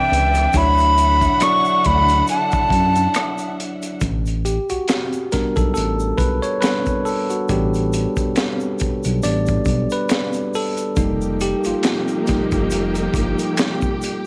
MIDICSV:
0, 0, Header, 1, 6, 480
1, 0, Start_track
1, 0, Tempo, 869565
1, 298, Time_signature, 4, 2, 24, 8
1, 7874, End_track
2, 0, Start_track
2, 0, Title_t, "Flute"
2, 0, Program_c, 0, 73
2, 0, Note_on_c, 0, 79, 94
2, 315, Note_on_c, 0, 83, 105
2, 324, Note_off_c, 0, 79, 0
2, 790, Note_on_c, 0, 85, 91
2, 798, Note_off_c, 0, 83, 0
2, 1028, Note_on_c, 0, 83, 91
2, 1037, Note_off_c, 0, 85, 0
2, 1263, Note_off_c, 0, 83, 0
2, 1268, Note_on_c, 0, 81, 88
2, 1961, Note_off_c, 0, 81, 0
2, 7874, End_track
3, 0, Start_track
3, 0, Title_t, "String section"
3, 0, Program_c, 1, 48
3, 0, Note_on_c, 1, 48, 72
3, 0, Note_on_c, 1, 71, 67
3, 0, Note_on_c, 1, 74, 69
3, 0, Note_on_c, 1, 76, 82
3, 280, Note_off_c, 1, 48, 0
3, 280, Note_off_c, 1, 71, 0
3, 280, Note_off_c, 1, 74, 0
3, 298, Note_on_c, 1, 78, 77
3, 300, Note_on_c, 1, 50, 70
3, 302, Note_on_c, 1, 62, 64
3, 2196, Note_off_c, 1, 76, 0
3, 2199, Note_off_c, 1, 78, 0
3, 2200, Note_off_c, 1, 50, 0
3, 2201, Note_off_c, 1, 62, 0
3, 6050, Note_on_c, 1, 53, 75
3, 6051, Note_on_c, 1, 63, 68
3, 6052, Note_on_c, 1, 58, 80
3, 6053, Note_on_c, 1, 67, 72
3, 7874, Note_off_c, 1, 53, 0
3, 7874, Note_off_c, 1, 58, 0
3, 7874, Note_off_c, 1, 63, 0
3, 7874, Note_off_c, 1, 67, 0
3, 7874, End_track
4, 0, Start_track
4, 0, Title_t, "Tine electric piano"
4, 0, Program_c, 2, 4
4, 0, Control_c, 2, 64, 127
4, 299, Note_on_c, 2, 54, 64
4, 301, Note_on_c, 2, 62, 65
4, 305, Control_c, 2, 64, 0
4, 307, Note_on_c, 2, 64, 62
4, 309, Note_on_c, 2, 73, 78
4, 406, Control_c, 2, 64, 127
4, 751, Note_off_c, 2, 54, 0
4, 752, Note_off_c, 2, 62, 0
4, 755, Note_off_c, 2, 64, 0
4, 756, Note_off_c, 2, 73, 0
4, 777, Note_on_c, 2, 54, 68
4, 780, Note_on_c, 2, 62, 63
4, 785, Note_on_c, 2, 64, 63
4, 790, Note_on_c, 2, 74, 74
4, 1683, Note_off_c, 2, 54, 0
4, 1684, Note_off_c, 2, 62, 0
4, 1686, Note_off_c, 2, 64, 0
4, 1689, Note_off_c, 2, 74, 0
4, 2225, Control_c, 2, 64, 0
4, 2336, Control_c, 2, 64, 127
4, 2457, Note_on_c, 2, 67, 71
4, 2594, Note_on_c, 2, 66, 79
4, 2596, Note_off_c, 2, 67, 0
4, 2916, Note_off_c, 2, 66, 0
4, 2938, Note_on_c, 2, 70, 80
4, 2940, Note_on_c, 2, 55, 55
4, 2941, Note_on_c, 2, 59, 48
4, 2947, Note_on_c, 2, 62, 60
4, 3069, Note_on_c, 2, 69, 80
4, 3077, Note_off_c, 2, 70, 0
4, 3162, Note_off_c, 2, 69, 0
4, 3168, Note_on_c, 2, 69, 84
4, 3396, Note_off_c, 2, 69, 0
4, 3409, Note_on_c, 2, 71, 97
4, 3546, Note_on_c, 2, 73, 95
4, 3553, Note_off_c, 2, 71, 0
4, 3647, Note_off_c, 2, 55, 0
4, 3648, Note_off_c, 2, 59, 0
4, 3648, Note_on_c, 2, 71, 92
4, 3652, Note_off_c, 2, 62, 0
4, 3653, Note_on_c, 2, 55, 44
4, 3655, Note_on_c, 2, 59, 41
4, 3657, Note_off_c, 2, 73, 0
4, 3658, Note_on_c, 2, 62, 47
4, 3873, Note_off_c, 2, 55, 0
4, 3874, Note_off_c, 2, 59, 0
4, 3875, Note_off_c, 2, 71, 0
4, 3876, Note_off_c, 2, 62, 0
4, 3893, Note_on_c, 2, 69, 86
4, 4029, Note_on_c, 2, 66, 76
4, 4035, Note_off_c, 2, 69, 0
4, 4128, Note_off_c, 2, 66, 0
4, 4135, Note_on_c, 2, 55, 53
4, 4137, Note_on_c, 2, 67, 78
4, 4140, Note_on_c, 2, 59, 47
4, 4143, Note_on_c, 2, 62, 56
4, 4361, Note_off_c, 2, 67, 0
4, 4467, Note_off_c, 2, 55, 0
4, 4470, Note_off_c, 2, 59, 0
4, 4471, Note_off_c, 2, 62, 0
4, 5095, Note_on_c, 2, 55, 46
4, 5097, Note_on_c, 2, 59, 44
4, 5098, Note_on_c, 2, 62, 52
4, 5098, Note_on_c, 2, 74, 106
4, 5314, Note_off_c, 2, 55, 0
4, 5315, Note_off_c, 2, 59, 0
4, 5316, Note_off_c, 2, 62, 0
4, 5477, Note_on_c, 2, 71, 94
4, 5484, Note_off_c, 2, 74, 0
4, 5798, Note_off_c, 2, 71, 0
4, 5825, Note_on_c, 2, 69, 97
4, 6051, Note_on_c, 2, 55, 56
4, 6056, Note_on_c, 2, 58, 51
4, 6059, Note_on_c, 2, 63, 58
4, 6065, Control_c, 2, 64, 0
4, 6167, Control_c, 2, 64, 127
4, 6301, Note_on_c, 2, 67, 93
4, 6316, Note_off_c, 2, 69, 0
4, 6361, Note_off_c, 2, 67, 0
4, 6438, Note_on_c, 2, 65, 80
4, 6752, Note_off_c, 2, 55, 0
4, 6755, Note_off_c, 2, 58, 0
4, 6756, Note_off_c, 2, 63, 0
4, 6776, Note_on_c, 2, 55, 48
4, 6777, Note_on_c, 2, 58, 47
4, 6780, Note_on_c, 2, 63, 51
4, 6995, Note_off_c, 2, 55, 0
4, 6995, Note_off_c, 2, 58, 0
4, 6996, Note_off_c, 2, 63, 0
4, 7613, Note_off_c, 2, 65, 0
4, 7874, End_track
5, 0, Start_track
5, 0, Title_t, "Analog synth bass"
5, 0, Program_c, 3, 38
5, 65, Note_on_c, 3, 37, 88
5, 262, Note_off_c, 3, 37, 0
5, 302, Note_on_c, 3, 38, 88
5, 700, Note_off_c, 3, 38, 0
5, 1031, Note_on_c, 3, 38, 91
5, 1225, Note_off_c, 3, 38, 0
5, 1498, Note_on_c, 3, 42, 86
5, 1697, Note_off_c, 3, 42, 0
5, 2221, Note_on_c, 3, 33, 93
5, 2532, Note_off_c, 3, 33, 0
5, 2604, Note_on_c, 3, 35, 47
5, 2643, Note_off_c, 3, 35, 0
5, 2951, Note_on_c, 3, 35, 44
5, 3002, Note_off_c, 3, 35, 0
5, 3079, Note_on_c, 3, 35, 84
5, 3164, Note_off_c, 3, 35, 0
5, 3186, Note_on_c, 3, 33, 102
5, 3382, Note_off_c, 3, 33, 0
5, 3419, Note_on_c, 3, 35, 83
5, 3531, Note_off_c, 3, 35, 0
5, 4142, Note_on_c, 3, 33, 97
5, 4452, Note_off_c, 3, 33, 0
5, 4514, Note_on_c, 3, 35, 51
5, 4556, Note_off_c, 3, 35, 0
5, 4869, Note_on_c, 3, 35, 50
5, 4921, Note_off_c, 3, 35, 0
5, 4999, Note_on_c, 3, 35, 93
5, 5084, Note_off_c, 3, 35, 0
5, 5104, Note_on_c, 3, 33, 87
5, 5301, Note_off_c, 3, 33, 0
5, 5336, Note_on_c, 3, 35, 85
5, 5449, Note_off_c, 3, 35, 0
5, 6060, Note_on_c, 3, 29, 86
5, 6371, Note_off_c, 3, 29, 0
5, 6438, Note_on_c, 3, 31, 52
5, 6478, Note_off_c, 3, 31, 0
5, 6788, Note_on_c, 3, 31, 49
5, 6839, Note_off_c, 3, 31, 0
5, 6919, Note_on_c, 3, 31, 87
5, 7003, Note_off_c, 3, 31, 0
5, 7022, Note_on_c, 3, 29, 96
5, 7220, Note_off_c, 3, 29, 0
5, 7257, Note_on_c, 3, 31, 85
5, 7370, Note_off_c, 3, 31, 0
5, 7874, End_track
6, 0, Start_track
6, 0, Title_t, "Drums"
6, 72, Note_on_c, 9, 42, 68
6, 127, Note_off_c, 9, 42, 0
6, 191, Note_on_c, 9, 82, 49
6, 192, Note_on_c, 9, 42, 42
6, 205, Note_on_c, 9, 37, 34
6, 246, Note_off_c, 9, 82, 0
6, 247, Note_off_c, 9, 42, 0
6, 261, Note_off_c, 9, 37, 0
6, 292, Note_on_c, 9, 82, 56
6, 299, Note_on_c, 9, 36, 103
6, 299, Note_on_c, 9, 42, 72
6, 347, Note_off_c, 9, 82, 0
6, 354, Note_off_c, 9, 36, 0
6, 354, Note_off_c, 9, 42, 0
6, 430, Note_on_c, 9, 82, 37
6, 443, Note_on_c, 9, 42, 32
6, 485, Note_off_c, 9, 82, 0
6, 498, Note_off_c, 9, 42, 0
6, 539, Note_on_c, 9, 82, 54
6, 540, Note_on_c, 9, 42, 60
6, 594, Note_off_c, 9, 82, 0
6, 595, Note_off_c, 9, 42, 0
6, 669, Note_on_c, 9, 82, 44
6, 670, Note_on_c, 9, 36, 82
6, 674, Note_on_c, 9, 42, 49
6, 725, Note_off_c, 9, 82, 0
6, 726, Note_off_c, 9, 36, 0
6, 729, Note_off_c, 9, 42, 0
6, 773, Note_on_c, 9, 42, 78
6, 778, Note_on_c, 9, 26, 54
6, 778, Note_on_c, 9, 82, 55
6, 784, Note_on_c, 9, 37, 118
6, 829, Note_off_c, 9, 42, 0
6, 833, Note_off_c, 9, 26, 0
6, 833, Note_off_c, 9, 82, 0
6, 839, Note_off_c, 9, 37, 0
6, 909, Note_on_c, 9, 82, 37
6, 964, Note_off_c, 9, 82, 0
6, 1018, Note_on_c, 9, 42, 61
6, 1027, Note_on_c, 9, 36, 88
6, 1073, Note_off_c, 9, 42, 0
6, 1082, Note_off_c, 9, 36, 0
6, 1150, Note_on_c, 9, 82, 36
6, 1156, Note_on_c, 9, 42, 53
6, 1205, Note_off_c, 9, 82, 0
6, 1211, Note_off_c, 9, 42, 0
6, 1255, Note_on_c, 9, 82, 66
6, 1263, Note_on_c, 9, 42, 66
6, 1310, Note_off_c, 9, 82, 0
6, 1318, Note_off_c, 9, 42, 0
6, 1388, Note_on_c, 9, 82, 42
6, 1390, Note_on_c, 9, 42, 32
6, 1397, Note_on_c, 9, 36, 90
6, 1443, Note_off_c, 9, 82, 0
6, 1445, Note_off_c, 9, 42, 0
6, 1453, Note_off_c, 9, 36, 0
6, 1493, Note_on_c, 9, 36, 81
6, 1502, Note_on_c, 9, 42, 64
6, 1548, Note_off_c, 9, 36, 0
6, 1558, Note_off_c, 9, 42, 0
6, 1630, Note_on_c, 9, 42, 39
6, 1632, Note_on_c, 9, 82, 43
6, 1686, Note_off_c, 9, 42, 0
6, 1687, Note_off_c, 9, 82, 0
6, 1733, Note_on_c, 9, 42, 69
6, 1736, Note_on_c, 9, 26, 62
6, 1736, Note_on_c, 9, 82, 64
6, 1745, Note_on_c, 9, 37, 109
6, 1788, Note_off_c, 9, 42, 0
6, 1792, Note_off_c, 9, 26, 0
6, 1792, Note_off_c, 9, 82, 0
6, 1800, Note_off_c, 9, 37, 0
6, 1866, Note_on_c, 9, 82, 43
6, 1869, Note_on_c, 9, 42, 30
6, 1921, Note_off_c, 9, 82, 0
6, 1924, Note_off_c, 9, 42, 0
6, 1986, Note_on_c, 9, 42, 60
6, 2042, Note_off_c, 9, 42, 0
6, 2111, Note_on_c, 9, 82, 50
6, 2112, Note_on_c, 9, 42, 42
6, 2166, Note_off_c, 9, 82, 0
6, 2167, Note_off_c, 9, 42, 0
6, 2211, Note_on_c, 9, 82, 54
6, 2214, Note_on_c, 9, 42, 64
6, 2216, Note_on_c, 9, 36, 101
6, 2266, Note_off_c, 9, 82, 0
6, 2269, Note_off_c, 9, 42, 0
6, 2271, Note_off_c, 9, 36, 0
6, 2351, Note_on_c, 9, 82, 35
6, 2359, Note_on_c, 9, 42, 31
6, 2406, Note_off_c, 9, 82, 0
6, 2415, Note_off_c, 9, 42, 0
6, 2459, Note_on_c, 9, 42, 54
6, 2460, Note_on_c, 9, 82, 51
6, 2514, Note_off_c, 9, 42, 0
6, 2515, Note_off_c, 9, 82, 0
6, 2591, Note_on_c, 9, 82, 39
6, 2592, Note_on_c, 9, 42, 47
6, 2647, Note_off_c, 9, 42, 0
6, 2647, Note_off_c, 9, 82, 0
6, 2692, Note_on_c, 9, 42, 78
6, 2698, Note_on_c, 9, 26, 50
6, 2698, Note_on_c, 9, 82, 55
6, 2702, Note_on_c, 9, 38, 113
6, 2747, Note_off_c, 9, 42, 0
6, 2753, Note_off_c, 9, 26, 0
6, 2753, Note_off_c, 9, 82, 0
6, 2757, Note_off_c, 9, 38, 0
6, 2829, Note_on_c, 9, 42, 32
6, 2832, Note_on_c, 9, 82, 38
6, 2884, Note_off_c, 9, 42, 0
6, 2887, Note_off_c, 9, 82, 0
6, 2937, Note_on_c, 9, 82, 39
6, 2938, Note_on_c, 9, 42, 67
6, 2945, Note_on_c, 9, 38, 33
6, 2946, Note_on_c, 9, 36, 77
6, 2992, Note_off_c, 9, 82, 0
6, 2993, Note_off_c, 9, 42, 0
6, 3000, Note_off_c, 9, 38, 0
6, 3001, Note_off_c, 9, 36, 0
6, 3070, Note_on_c, 9, 82, 36
6, 3073, Note_on_c, 9, 42, 48
6, 3074, Note_on_c, 9, 36, 94
6, 3125, Note_off_c, 9, 82, 0
6, 3128, Note_off_c, 9, 42, 0
6, 3129, Note_off_c, 9, 36, 0
6, 3176, Note_on_c, 9, 82, 68
6, 3186, Note_on_c, 9, 42, 72
6, 3231, Note_off_c, 9, 82, 0
6, 3242, Note_off_c, 9, 42, 0
6, 3309, Note_on_c, 9, 82, 44
6, 3365, Note_off_c, 9, 82, 0
6, 3411, Note_on_c, 9, 82, 40
6, 3412, Note_on_c, 9, 36, 82
6, 3422, Note_on_c, 9, 42, 63
6, 3466, Note_off_c, 9, 82, 0
6, 3468, Note_off_c, 9, 36, 0
6, 3477, Note_off_c, 9, 42, 0
6, 3549, Note_on_c, 9, 82, 40
6, 3553, Note_on_c, 9, 42, 39
6, 3604, Note_off_c, 9, 82, 0
6, 3608, Note_off_c, 9, 42, 0
6, 3653, Note_on_c, 9, 42, 68
6, 3655, Note_on_c, 9, 26, 65
6, 3655, Note_on_c, 9, 82, 61
6, 3665, Note_on_c, 9, 38, 108
6, 3708, Note_off_c, 9, 42, 0
6, 3710, Note_off_c, 9, 26, 0
6, 3710, Note_off_c, 9, 82, 0
6, 3720, Note_off_c, 9, 38, 0
6, 3785, Note_on_c, 9, 82, 38
6, 3788, Note_on_c, 9, 42, 29
6, 3791, Note_on_c, 9, 36, 65
6, 3840, Note_off_c, 9, 82, 0
6, 3843, Note_off_c, 9, 42, 0
6, 3846, Note_off_c, 9, 36, 0
6, 3896, Note_on_c, 9, 82, 52
6, 3910, Note_on_c, 9, 46, 46
6, 3951, Note_off_c, 9, 82, 0
6, 3965, Note_off_c, 9, 46, 0
6, 4030, Note_on_c, 9, 82, 44
6, 4031, Note_on_c, 9, 42, 42
6, 4085, Note_off_c, 9, 82, 0
6, 4086, Note_off_c, 9, 42, 0
6, 4132, Note_on_c, 9, 82, 52
6, 4136, Note_on_c, 9, 36, 102
6, 4136, Note_on_c, 9, 42, 71
6, 4188, Note_off_c, 9, 82, 0
6, 4191, Note_off_c, 9, 42, 0
6, 4192, Note_off_c, 9, 36, 0
6, 4271, Note_on_c, 9, 82, 37
6, 4280, Note_on_c, 9, 42, 30
6, 4326, Note_off_c, 9, 82, 0
6, 4335, Note_off_c, 9, 42, 0
6, 4377, Note_on_c, 9, 82, 55
6, 4380, Note_on_c, 9, 42, 61
6, 4432, Note_off_c, 9, 82, 0
6, 4435, Note_off_c, 9, 42, 0
6, 4506, Note_on_c, 9, 82, 45
6, 4509, Note_on_c, 9, 36, 83
6, 4512, Note_on_c, 9, 42, 48
6, 4561, Note_off_c, 9, 82, 0
6, 4564, Note_off_c, 9, 36, 0
6, 4568, Note_off_c, 9, 42, 0
6, 4613, Note_on_c, 9, 42, 79
6, 4614, Note_on_c, 9, 26, 56
6, 4614, Note_on_c, 9, 82, 54
6, 4623, Note_on_c, 9, 38, 104
6, 4668, Note_off_c, 9, 42, 0
6, 4669, Note_off_c, 9, 26, 0
6, 4669, Note_off_c, 9, 82, 0
6, 4678, Note_off_c, 9, 38, 0
6, 4749, Note_on_c, 9, 82, 39
6, 4804, Note_off_c, 9, 82, 0
6, 4850, Note_on_c, 9, 82, 39
6, 4856, Note_on_c, 9, 42, 63
6, 4866, Note_on_c, 9, 36, 78
6, 4905, Note_off_c, 9, 82, 0
6, 4911, Note_off_c, 9, 42, 0
6, 4921, Note_off_c, 9, 36, 0
6, 4986, Note_on_c, 9, 82, 40
6, 4994, Note_on_c, 9, 42, 51
6, 5042, Note_off_c, 9, 82, 0
6, 5049, Note_off_c, 9, 42, 0
6, 5093, Note_on_c, 9, 82, 62
6, 5103, Note_on_c, 9, 42, 74
6, 5148, Note_off_c, 9, 82, 0
6, 5158, Note_off_c, 9, 42, 0
6, 5223, Note_on_c, 9, 82, 44
6, 5233, Note_on_c, 9, 42, 34
6, 5236, Note_on_c, 9, 36, 85
6, 5278, Note_off_c, 9, 82, 0
6, 5288, Note_off_c, 9, 42, 0
6, 5292, Note_off_c, 9, 36, 0
6, 5326, Note_on_c, 9, 82, 42
6, 5331, Note_on_c, 9, 36, 83
6, 5343, Note_on_c, 9, 42, 61
6, 5381, Note_off_c, 9, 82, 0
6, 5386, Note_off_c, 9, 36, 0
6, 5398, Note_off_c, 9, 42, 0
6, 5465, Note_on_c, 9, 82, 41
6, 5474, Note_on_c, 9, 42, 42
6, 5520, Note_off_c, 9, 82, 0
6, 5529, Note_off_c, 9, 42, 0
6, 5571, Note_on_c, 9, 26, 61
6, 5571, Note_on_c, 9, 42, 71
6, 5571, Note_on_c, 9, 82, 63
6, 5584, Note_on_c, 9, 38, 106
6, 5626, Note_off_c, 9, 26, 0
6, 5626, Note_off_c, 9, 82, 0
6, 5627, Note_off_c, 9, 42, 0
6, 5639, Note_off_c, 9, 38, 0
6, 5702, Note_on_c, 9, 82, 45
6, 5709, Note_on_c, 9, 42, 29
6, 5757, Note_off_c, 9, 82, 0
6, 5764, Note_off_c, 9, 42, 0
6, 5818, Note_on_c, 9, 82, 51
6, 5827, Note_on_c, 9, 46, 45
6, 5873, Note_off_c, 9, 82, 0
6, 5882, Note_off_c, 9, 46, 0
6, 5946, Note_on_c, 9, 42, 42
6, 5947, Note_on_c, 9, 82, 50
6, 6001, Note_off_c, 9, 42, 0
6, 6003, Note_off_c, 9, 82, 0
6, 6050, Note_on_c, 9, 82, 57
6, 6052, Note_on_c, 9, 42, 70
6, 6055, Note_on_c, 9, 36, 112
6, 6105, Note_off_c, 9, 82, 0
6, 6108, Note_off_c, 9, 42, 0
6, 6110, Note_off_c, 9, 36, 0
6, 6190, Note_on_c, 9, 82, 41
6, 6245, Note_off_c, 9, 82, 0
6, 6295, Note_on_c, 9, 82, 51
6, 6297, Note_on_c, 9, 42, 59
6, 6350, Note_off_c, 9, 82, 0
6, 6352, Note_off_c, 9, 42, 0
6, 6425, Note_on_c, 9, 82, 44
6, 6429, Note_on_c, 9, 42, 49
6, 6480, Note_off_c, 9, 82, 0
6, 6484, Note_off_c, 9, 42, 0
6, 6529, Note_on_c, 9, 42, 82
6, 6533, Note_on_c, 9, 26, 59
6, 6533, Note_on_c, 9, 82, 61
6, 6540, Note_on_c, 9, 38, 117
6, 6585, Note_off_c, 9, 42, 0
6, 6588, Note_off_c, 9, 26, 0
6, 6588, Note_off_c, 9, 82, 0
6, 6595, Note_off_c, 9, 38, 0
6, 6667, Note_on_c, 9, 42, 35
6, 6669, Note_on_c, 9, 82, 40
6, 6723, Note_off_c, 9, 42, 0
6, 6724, Note_off_c, 9, 82, 0
6, 6771, Note_on_c, 9, 82, 42
6, 6775, Note_on_c, 9, 42, 71
6, 6781, Note_on_c, 9, 38, 35
6, 6784, Note_on_c, 9, 36, 90
6, 6827, Note_off_c, 9, 82, 0
6, 6830, Note_off_c, 9, 42, 0
6, 6836, Note_off_c, 9, 38, 0
6, 6840, Note_off_c, 9, 36, 0
6, 6907, Note_on_c, 9, 82, 40
6, 6910, Note_on_c, 9, 42, 50
6, 6912, Note_on_c, 9, 36, 89
6, 6962, Note_off_c, 9, 82, 0
6, 6965, Note_off_c, 9, 42, 0
6, 6967, Note_off_c, 9, 36, 0
6, 7013, Note_on_c, 9, 82, 65
6, 7021, Note_on_c, 9, 42, 71
6, 7068, Note_off_c, 9, 82, 0
6, 7076, Note_off_c, 9, 42, 0
6, 7149, Note_on_c, 9, 42, 34
6, 7149, Note_on_c, 9, 82, 44
6, 7204, Note_off_c, 9, 42, 0
6, 7204, Note_off_c, 9, 82, 0
6, 7252, Note_on_c, 9, 36, 86
6, 7252, Note_on_c, 9, 82, 44
6, 7262, Note_on_c, 9, 42, 68
6, 7307, Note_off_c, 9, 36, 0
6, 7307, Note_off_c, 9, 82, 0
6, 7317, Note_off_c, 9, 42, 0
6, 7388, Note_on_c, 9, 82, 40
6, 7392, Note_on_c, 9, 42, 44
6, 7444, Note_off_c, 9, 82, 0
6, 7447, Note_off_c, 9, 42, 0
6, 7492, Note_on_c, 9, 42, 75
6, 7493, Note_on_c, 9, 26, 66
6, 7493, Note_on_c, 9, 82, 66
6, 7504, Note_on_c, 9, 38, 102
6, 7547, Note_off_c, 9, 42, 0
6, 7548, Note_off_c, 9, 26, 0
6, 7548, Note_off_c, 9, 82, 0
6, 7559, Note_off_c, 9, 38, 0
6, 7625, Note_on_c, 9, 82, 40
6, 7631, Note_on_c, 9, 36, 74
6, 7681, Note_off_c, 9, 82, 0
6, 7686, Note_off_c, 9, 36, 0
6, 7738, Note_on_c, 9, 82, 53
6, 7748, Note_on_c, 9, 42, 71
6, 7793, Note_off_c, 9, 82, 0
6, 7803, Note_off_c, 9, 42, 0
6, 7874, End_track
0, 0, End_of_file